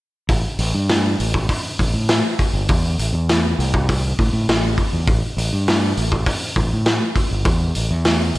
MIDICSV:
0, 0, Header, 1, 3, 480
1, 0, Start_track
1, 0, Key_signature, 0, "minor"
1, 0, Tempo, 597015
1, 231, Time_signature, 4, 2, 24, 8
1, 6742, End_track
2, 0, Start_track
2, 0, Title_t, "Fingered electric bass"
2, 0, Program_c, 0, 33
2, 235, Note_on_c, 0, 33, 87
2, 340, Note_off_c, 0, 33, 0
2, 472, Note_on_c, 0, 33, 98
2, 579, Note_off_c, 0, 33, 0
2, 599, Note_on_c, 0, 43, 96
2, 916, Note_off_c, 0, 43, 0
2, 963, Note_on_c, 0, 33, 86
2, 1172, Note_off_c, 0, 33, 0
2, 1443, Note_on_c, 0, 33, 89
2, 1546, Note_off_c, 0, 33, 0
2, 1560, Note_on_c, 0, 45, 77
2, 1771, Note_off_c, 0, 45, 0
2, 2037, Note_on_c, 0, 31, 91
2, 2143, Note_off_c, 0, 31, 0
2, 2165, Note_on_c, 0, 40, 96
2, 2373, Note_off_c, 0, 40, 0
2, 2400, Note_on_c, 0, 33, 85
2, 2504, Note_off_c, 0, 33, 0
2, 2515, Note_on_c, 0, 40, 89
2, 2835, Note_off_c, 0, 40, 0
2, 2885, Note_on_c, 0, 36, 97
2, 3307, Note_off_c, 0, 36, 0
2, 3369, Note_on_c, 0, 45, 89
2, 3470, Note_off_c, 0, 45, 0
2, 3478, Note_on_c, 0, 45, 88
2, 3583, Note_off_c, 0, 45, 0
2, 3607, Note_on_c, 0, 33, 86
2, 3815, Note_off_c, 0, 33, 0
2, 3966, Note_on_c, 0, 40, 79
2, 4067, Note_off_c, 0, 40, 0
2, 4086, Note_on_c, 0, 33, 99
2, 4187, Note_off_c, 0, 33, 0
2, 4315, Note_on_c, 0, 33, 94
2, 4421, Note_off_c, 0, 33, 0
2, 4445, Note_on_c, 0, 43, 100
2, 4759, Note_off_c, 0, 43, 0
2, 4804, Note_on_c, 0, 33, 88
2, 5012, Note_off_c, 0, 33, 0
2, 5278, Note_on_c, 0, 33, 91
2, 5382, Note_off_c, 0, 33, 0
2, 5410, Note_on_c, 0, 45, 79
2, 5614, Note_off_c, 0, 45, 0
2, 5878, Note_on_c, 0, 31, 88
2, 5980, Note_off_c, 0, 31, 0
2, 5995, Note_on_c, 0, 40, 95
2, 6205, Note_off_c, 0, 40, 0
2, 6242, Note_on_c, 0, 33, 82
2, 6342, Note_off_c, 0, 33, 0
2, 6359, Note_on_c, 0, 40, 99
2, 6672, Note_off_c, 0, 40, 0
2, 6715, Note_on_c, 0, 36, 87
2, 6742, Note_off_c, 0, 36, 0
2, 6742, End_track
3, 0, Start_track
3, 0, Title_t, "Drums"
3, 230, Note_on_c, 9, 46, 86
3, 233, Note_on_c, 9, 36, 109
3, 311, Note_off_c, 9, 46, 0
3, 313, Note_off_c, 9, 36, 0
3, 472, Note_on_c, 9, 46, 62
3, 552, Note_off_c, 9, 46, 0
3, 717, Note_on_c, 9, 46, 77
3, 720, Note_on_c, 9, 38, 109
3, 797, Note_off_c, 9, 46, 0
3, 800, Note_off_c, 9, 38, 0
3, 964, Note_on_c, 9, 46, 64
3, 1044, Note_off_c, 9, 46, 0
3, 1079, Note_on_c, 9, 36, 81
3, 1159, Note_off_c, 9, 36, 0
3, 1197, Note_on_c, 9, 46, 85
3, 1199, Note_on_c, 9, 36, 106
3, 1278, Note_off_c, 9, 46, 0
3, 1279, Note_off_c, 9, 36, 0
3, 1441, Note_on_c, 9, 36, 76
3, 1448, Note_on_c, 9, 46, 61
3, 1522, Note_off_c, 9, 36, 0
3, 1528, Note_off_c, 9, 46, 0
3, 1678, Note_on_c, 9, 46, 80
3, 1681, Note_on_c, 9, 38, 112
3, 1758, Note_off_c, 9, 46, 0
3, 1761, Note_off_c, 9, 38, 0
3, 1923, Note_on_c, 9, 36, 72
3, 1925, Note_on_c, 9, 46, 62
3, 2003, Note_off_c, 9, 36, 0
3, 2005, Note_off_c, 9, 46, 0
3, 2159, Note_on_c, 9, 46, 73
3, 2164, Note_on_c, 9, 36, 99
3, 2240, Note_off_c, 9, 46, 0
3, 2244, Note_off_c, 9, 36, 0
3, 2406, Note_on_c, 9, 46, 63
3, 2486, Note_off_c, 9, 46, 0
3, 2646, Note_on_c, 9, 46, 72
3, 2649, Note_on_c, 9, 38, 100
3, 2726, Note_off_c, 9, 46, 0
3, 2729, Note_off_c, 9, 38, 0
3, 2894, Note_on_c, 9, 46, 59
3, 2974, Note_off_c, 9, 46, 0
3, 3006, Note_on_c, 9, 36, 97
3, 3086, Note_off_c, 9, 36, 0
3, 3127, Note_on_c, 9, 36, 107
3, 3133, Note_on_c, 9, 46, 81
3, 3208, Note_off_c, 9, 36, 0
3, 3213, Note_off_c, 9, 46, 0
3, 3368, Note_on_c, 9, 36, 82
3, 3378, Note_on_c, 9, 46, 59
3, 3448, Note_off_c, 9, 36, 0
3, 3458, Note_off_c, 9, 46, 0
3, 3608, Note_on_c, 9, 46, 74
3, 3611, Note_on_c, 9, 38, 112
3, 3688, Note_off_c, 9, 46, 0
3, 3692, Note_off_c, 9, 38, 0
3, 3842, Note_on_c, 9, 36, 73
3, 3843, Note_on_c, 9, 46, 54
3, 3922, Note_off_c, 9, 36, 0
3, 3923, Note_off_c, 9, 46, 0
3, 4081, Note_on_c, 9, 36, 114
3, 4083, Note_on_c, 9, 46, 69
3, 4161, Note_off_c, 9, 36, 0
3, 4164, Note_off_c, 9, 46, 0
3, 4327, Note_on_c, 9, 46, 62
3, 4408, Note_off_c, 9, 46, 0
3, 4565, Note_on_c, 9, 46, 80
3, 4568, Note_on_c, 9, 38, 109
3, 4645, Note_off_c, 9, 46, 0
3, 4648, Note_off_c, 9, 38, 0
3, 4802, Note_on_c, 9, 46, 60
3, 4882, Note_off_c, 9, 46, 0
3, 4919, Note_on_c, 9, 36, 86
3, 4999, Note_off_c, 9, 36, 0
3, 5036, Note_on_c, 9, 36, 106
3, 5040, Note_on_c, 9, 46, 89
3, 5117, Note_off_c, 9, 36, 0
3, 5120, Note_off_c, 9, 46, 0
3, 5275, Note_on_c, 9, 36, 78
3, 5277, Note_on_c, 9, 46, 55
3, 5356, Note_off_c, 9, 36, 0
3, 5358, Note_off_c, 9, 46, 0
3, 5513, Note_on_c, 9, 46, 72
3, 5516, Note_on_c, 9, 38, 108
3, 5594, Note_off_c, 9, 46, 0
3, 5597, Note_off_c, 9, 38, 0
3, 5753, Note_on_c, 9, 36, 72
3, 5757, Note_on_c, 9, 46, 62
3, 5834, Note_off_c, 9, 36, 0
3, 5837, Note_off_c, 9, 46, 0
3, 5989, Note_on_c, 9, 46, 77
3, 5992, Note_on_c, 9, 36, 116
3, 6070, Note_off_c, 9, 46, 0
3, 6072, Note_off_c, 9, 36, 0
3, 6231, Note_on_c, 9, 46, 68
3, 6311, Note_off_c, 9, 46, 0
3, 6470, Note_on_c, 9, 46, 85
3, 6474, Note_on_c, 9, 38, 98
3, 6551, Note_off_c, 9, 46, 0
3, 6554, Note_off_c, 9, 38, 0
3, 6715, Note_on_c, 9, 46, 59
3, 6742, Note_off_c, 9, 46, 0
3, 6742, End_track
0, 0, End_of_file